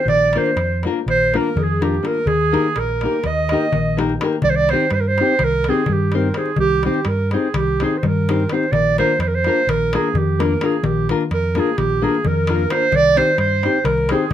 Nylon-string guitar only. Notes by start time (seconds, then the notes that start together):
0.35 A#3 D4 F4 A#4
0.84 A#3 D4 F4 A#4
1.34 A#3 D4 F4 A#4
1.81 A#3 D4 F4 A#4
2.03 A#3 D4 F4 A#4
2.52 A#3 D#4 G4 A#4
3.03 A#3 D#4 G4 A#4
3.51 A#3 D#4 G4 A#4
3.97 A#3 D#4 G4 A#4
4.21 A#3 D#4 G4 A#4
4.71 C4 D#4 G4 C5
5.20 C4 D#4 G4 C5
5.68 C4 D#4 G4 C5
6.14 C4 D#4 G4 C5
6.35 C4 D#4 G4 C5
6.85 C4 D#4 G4 C5
7.33 C4 D#4 G4 C5
7.81 C4 D#4 G4 C5
8.28 C4 D#4 G4 C5
8.52 C4 D#4 G4 C5
8.98 A#3 D4 F4 A#4
9.46 A#3 D4 F4 A#4
9.93 A#3 D4 F4 A#4
10.39 A#3 D4 F4 A#4
10.61 A#3 D4 F4 A#4
11.10 A#3 D4 F4 A#4
11.55 A#3 D4 F4 A#4
12.02 A#3 D4 F4 A#4
12.49 A#3 D4 F4 A#4
12.71 A#3 D4 F4 A#4
13.15 C4 D#4 G4 C5
13.63 C4 D#4 G4 C5
14.10 C4 D#4 G4 C5